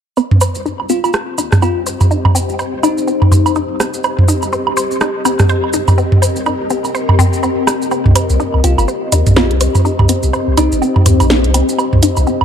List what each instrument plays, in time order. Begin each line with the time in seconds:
0.17 ambient pad C4, synth arpeggio sound C4, low woodblock, maracas
0.31 sub bass C2, mid tom
0.41 synth arpeggio sound C5, low woodblock, maracas
0.55 sub bass C2, maracas
0.64 synth arpeggio sound D#4, ambient pad G4, maracas
0.80 sub bass C2, low woodblock
0.89 sub bass C2, synth arpeggio sound C4, fm electric piano F4, maracas
1.04 sub bass G1, fm electric piano F4, low woodblock, maracas
1.13 synth arpeggio sound C5, cross-stick, maracas
1.19 ambient pad C5 D#5
1.38 sub bass D#2, synth arpeggio sound D#4, low woodblock, maracas
1.52 sub bass A#1, cross-stick, mid tom, maracas
1.62 synth arpeggio sound C4, fm electric piano F4, low woodblock, maracas
1.77 sub bass C2
1.86 synth arpeggio sound C5, maracas
2.01 mid tom, low woodblock, maracas
2.11 synth arpeggio sound D#4, maracas
2.25 sub bass C2, mid tom, low woodblock
2.35 synth arpeggio sound C4, maracas
2.49 sub bass C2, maracas
2.59 synth arpeggio sound C5, low woodblock, maracas
2.73 sub bass C2
2.83 sub bass C2, synth arpeggio sound D#4, fm electric piano D#4, low woodblock, maracas
2.98 sub bass G1, maracas
3.07 synth arpeggio sound C4, maracas
3.22 mid tom, low woodblock
3.32 sub bass D#2, synth arpeggio sound C5, mid tom, maracas
3.46 sub bass A#1, low woodblock, maracas
3.55 synth arpeggio sound D#4, maracas
3.70 sub bass C2
3.80 synth arpeggio sound C4, cross-stick, low woodblock, maracas
3.94 maracas
4.04 synth arpeggio sound C5, low woodblock, maracas
4.19 sub bass C2, mid tom
4.28 synth arpeggio sound D#4, maracas
4.42 sub bass C2, low woodblock, maracas
4.53 synth arpeggio sound C4, maracas
4.67 sub bass C2, low woodblock
4.77 sub bass C2, synth arpeggio sound C5, maracas
4.91 sub bass G1, maracas
5.01 synth arpeggio sound D#4, cross-stick, low woodblock, maracas
5.19 ambient pad A#4
5.25 sub bass D#2, synth arpeggio sound C4, low woodblock, maracas
5.39 sub bass A#1, cross-stick, mid tom, maracas
5.49 synth arpeggio sound C5, maracas
5.64 sub bass C2, low woodblock
5.73 synth arpeggio sound D#4, maracas
5.88 mid tom, low woodblock, maracas
5.98 synth arpeggio sound C4, maracas
6.12 sub bass C2, mid tom
6.22 synth arpeggio sound C5, low woodblock, maracas
6.36 sub bass C2, maracas
6.46 synth arpeggio sound D#4, low woodblock, maracas
6.60 sub bass C2
6.70 sub bass C2, synth arpeggio sound C4, maracas
6.84 sub bass G1, low woodblock, maracas
6.95 synth arpeggio sound C5, maracas
7.09 mid tom, low woodblock
7.19 synth arpeggio sound C4, mid tom, maracas
7.33 sub bass G1, maracas
7.43 synth arpeggio sound C4, low woodblock, maracas
7.67 synth arpeggio sound D#4, cross-stick, low woodblock, maracas
7.82 maracas
7.91 synth arpeggio sound C4, low woodblock, maracas
8.06 sub bass C2, mid tom
8.13 ambient pad C5, synth arpeggio sound C5, closed hi-hat, low woodblock, maracas
8.30 sub bass C2, maracas
8.40 synth arpeggio sound D#4, maracas
8.54 sub bass C2, low woodblock
8.64 sub bass C2, synth arpeggio sound C4, fm electric piano F4, closed hi-hat, maracas
8.78 sub bass G1, fm electric piano F4, low woodblock, maracas
8.88 synth arpeggio sound C5, maracas
9.12 sub bass D#2, synth arpeggio sound D#4, closed hi-hat, low woodblock, maracas
9.27 sub bass A#1, closed hi-hat, mid tom, maracas
9.36 synth arpeggio sound C4, fm electric piano F4, snare, low woodblock, maracas
9.51 sub bass C2, closed hi-hat
9.60 synth arpeggio sound C5, closed hi-hat, maracas
9.75 mid tom, low woodblock, maracas
9.85 synth arpeggio sound D#4, maracas
9.99 sub bass C2, mid tom, low woodblock
10.09 synth arpeggio sound C4, closed hi-hat, maracas
10.23 sub bass C2, maracas
10.33 synth arpeggio sound C5, low woodblock, maracas
10.48 sub bass C2
10.57 sub bass C2, fm electric piano D#4, synth arpeggio sound D#4, closed hi-hat, low woodblock, maracas
10.72 sub bass G1, maracas
10.82 synth arpeggio sound C4, maracas
10.96 mid tom, low woodblock
11.06 sub bass D#2, synth arpeggio sound C5, closed hi-hat, mid tom, maracas
11.20 sub bass A#1, closed hi-hat, low woodblock, maracas
11.30 synth arpeggio sound D#4, snare, maracas
11.44 sub bass C2, closed hi-hat
11.54 synth arpeggio sound C4, closed hi-hat, low woodblock, maracas
11.69 maracas
11.78 synth arpeggio sound C5, low woodblock, maracas
11.93 sub bass C2, mid tom
12.03 synth arpeggio sound D#4, closed hi-hat, maracas
12.17 sub bass C2, low woodblock, maracas
12.27 synth arpeggio sound C4, maracas
12.41 sub bass C2, low woodblock